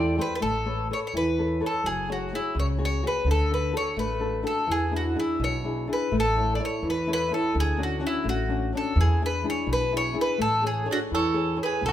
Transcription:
Already playing: upright bass E2, nylon-string guitar E3 G4 A4 C5, mandolin D5
0.18 nylon-string guitar G4 A4 C5, mandolin B4
0.35 mandolin B4
0.40 upright bass A1, nylon-string guitar A3, mandolin A4
0.66 nylon-string guitar A4 B4 C#5
0.91 nylon-string guitar A4 B4 C#5, mandolin C#5
1.07 mandolin C#5
1.13 upright bass E2, nylon-string guitar E3, mandolin B4
1.38 nylon-string guitar A4 B4 C#5
1.60 nylon-string guitar A4 B4 C#5
1.66 mandolin A4
1.84 upright bass F#1, nylon-string guitar F#3, mandolin G#4
2.08 nylon-string guitar F#4 G#4 C#5, mandolin F#4
2.32 mandolin E4, nylon-string guitar F#4 G#4 C#5
2.55 upright bass C#2, nylon-string guitar C#3
2.59 mandolin C#5
2.78 nylon-string guitar F#4 G#4 C#5
2.85 mandolin C#5
3.03 nylon-string guitar F#4 G#4 C#5
3.07 mandolin B4
3.25 upright bass D2, nylon-string guitar D3
3.31 mandolin A4
3.50 nylon-string guitar D4 F#4 A4, mandolin B4
3.72 nylon-string guitar D4 F#4 A4
3.77 mandolin C#5
3.97 upright bass A1, nylon-string guitar A3, mandolin B4
4.19 nylon-string guitar D4 F#4 A4
4.43 nylon-string guitar D4 F#4 A4
4.47 mandolin A4
4.67 upright bass E2, nylon-string guitar E3
4.72 mandolin G#4
4.91 nylon-string guitar D4 E4 G#4
4.96 mandolin F#4
5.15 nylon-string guitar D4 E4 G#4
5.20 mandolin E4
5.39 upright bass B1, nylon-string guitar B2
5.44 mandolin C#5
5.64 nylon-string guitar D4 E4 G#4
5.87 nylon-string guitar D4 E4 G#4
5.93 mandolin B4
6.12 upright bass A1, nylon-string guitar A3
6.20 mandolin A4
6.36 nylon-string guitar E4 A4 C#5
6.55 mandolin D5
6.59 nylon-string guitar E4 A4 C#5
6.65 mandolin C#5
6.82 upright bass E2, nylon-string guitar E3
6.90 mandolin B4
7.07 nylon-string guitar E4 A4 C#5
7.13 mandolin B4
7.31 nylon-string guitar E4 A4 C#5, mandolin A4
7.54 upright bass D2, nylon-string guitar D3
7.60 mandolin G#4
7.78 nylon-string guitar C#4 D4 F#4
7.83 mandolin F#4
8.00 nylon-string guitar C#4 D4 F#4
8.07 mandolin E4
8.24 upright bass A1, nylon-string guitar A3
8.29 mandolin F#4
8.49 nylon-string guitar C#4 D4 F#4
8.73 nylon-string guitar C#4 D4 F#4, mandolin A4
8.96 upright bass E2, nylon-string guitar E3
9.01 mandolin G#4
9.21 nylon-string guitar D4 E4 G#4
9.26 mandolin B4
9.44 nylon-string guitar D4 E4 G#4
9.50 mandolin C#5
9.67 upright bass B1, nylon-string guitar B2
9.73 mandolin B4
9.92 nylon-string guitar D4 E4 G#4
9.97 mandolin C#5
10.13 nylon-string guitar D4 E4 G#4
10.21 mandolin B4
10.38 upright bass A1, nylon-string guitar A3, mandolin A4
10.62 nylon-string guitar G#4 A4 C#5
10.67 mandolin G#4
10.86 nylon-string guitar G#4 A4 C#5
10.91 mandolin D4 F#4
11.11 upright bass E2, nylon-string guitar E3, mandolin A4 C#5
11.34 nylon-string guitar G#4 A4 C#5
11.56 nylon-string guitar G#4 A4 C#5
11.63 mandolin G#4 B4
11.81 upright bass B1, nylon-string guitar B3
11.86 mandolin F#4 A4

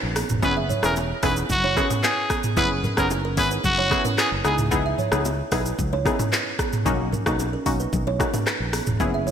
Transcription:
0.03 fingered electric bass A#1
0.16 kalimba B3 G#4, cross-stick, open hi-hat, shaker
0.29 fingered electric bass E1, mid tom, shaker
0.42 fingered electric bass F#1, synth pluck B3 C#4 E4 G#4, trumpet B4, kick, low conga, shaker
0.57 kalimba G#4 E5
0.69 kalimba E4 C#5, mid tom, low conga, shaker
0.83 fingered electric bass E1, synth pluck B3 C#4 E4 G#4, trumpet A#4, cross-stick, shaker
0.96 high bongo, shaker
1.23 fingered electric bass E1, synth pluck B3 C#4 E4 G#4, kalimba D#4 B4, trumpet B4, kick, cross-stick, open hi-hat, shaker
1.36 shaker
1.50 fingered electric bass F#1, trumpet F#4, kick, low conga, shaker
1.64 kalimba E4 C#5, low bongo
1.76 synth pluck B3 C#4 E4 G#4, kalimba C#4 A#4, kick, cross-stick, shaker
1.90 mid tom, high bongo, low bongo, shaker
2.03 kalimba E4 B4, trumpet G#4, clap, high bongo, shaker
2.30 kalimba B3 G#4, kick, cross-stick, shaker
2.43 mid tom, shaker
2.57 fingered electric bass F#1, synth pluck B3 C#4 E4 G#4, trumpet B4, kick, low conga, shaker
2.83 kalimba C#4 A#4, mid tom, low conga, shaker
2.97 fingered electric bass F#1, synth pluck B3 C#4 E4 G#4, kalimba D#4 B4, trumpet A#4, kick, cross-stick, shaker
3.10 high bongo, shaker
3.25 kalimba C#4 A#4
3.37 fingered electric bass G#1, synth pluck B3 C#4 E4 G#4, trumpet B4, kick, open hi-hat, shaker
3.51 kalimba D#4 B4, shaker
3.64 fingered electric bass F#1, trumpet F#4, kick, low conga, shaker
3.78 kalimba E4 C#5, low bongo
3.91 synth pluck B3 C#4 E4 G#4, kick, cross-stick, shaker
4.05 kalimba C#4 A#4, mid tom, high bongo, low bongo, shaker
4.18 kalimba E4 B4, trumpet G#4, cross-stick, clap, high bongo, shaker
4.32 fingered electric bass F#1
4.44 fingered electric bass C#2, synth pluck B3 D#4 E4 G#4, kalimba B3 G#4, trumpet G#4, cross-stick, shaker
4.58 mid tom, shaker
4.71 synth pluck B3 D#4 E4 G#4, kick, low conga, shaker
4.86 kalimba G#4 E5
4.98 kalimba E4 C#5, mid tom, low conga, shaker
5.12 fingered electric bass C#2, synth pluck B3 D#4 E4 G#4, cross-stick, shaker
5.25 high bongo, shaker
5.52 fingered electric bass B1, synth pluck B3 D#4 E4 G#4, kalimba D#4 B4, kick, cross-stick, open hi-hat, shaker
5.66 shaker
5.79 fingered electric bass C#2, kick, low conga, shaker
5.93 kalimba E4 C#5, low bongo
6.05 synth pluck B3 D#4 E4 G#4, kalimba C#4 A#4, kick, cross-stick, shaker
6.19 mid tom, high bongo, low bongo, shaker
6.32 kalimba E4 B4, clap, high bongo, shaker
6.59 kalimba B3 G#4, kick, cross-stick, shaker
6.73 mid tom, shaker
6.85 fingered electric bass B1, synth pluck A#3 C#4 D#4 F#4, kick, low conga, shaker
7.12 kalimba C#4 A#4, mid tom, low conga, shaker
7.26 fingered electric bass B1, synth pluck A#3 C#4 D#4 F#4, kalimba D#4 B4, kick, cross-stick, shaker
7.39 high bongo, shaker
7.53 kalimba C#4 A#4
7.66 fingered electric bass B1, synth pluck A#3 C#4 D#4 F#4, kick, open hi-hat, shaker
7.80 kalimba D#4 B4, shaker
7.93 fingered electric bass B1, kick, low conga, shaker
8.07 kalimba E4 C#5, low bongo
8.19 synth pluck A#3 C#4 D#4 F#4, kick, cross-stick, shaker
8.34 kalimba C#4 A#4, mid tom, high bongo, low bongo, shaker
8.47 kalimba D#4 B4, cross-stick, clap, high bongo, shaker
8.60 fingered electric bass A#1
8.73 kalimba B3 G#4, cross-stick, open hi-hat, shaker
8.87 fingered electric bass E1, mid tom, shaker
9.00 fingered electric bass F#1, synth pluck B3 C#4 E4 G#4, kick, low conga, shaker
9.14 kalimba G#4 E5
9.27 kalimba E4 C#5, low bongo, low conga, shaker

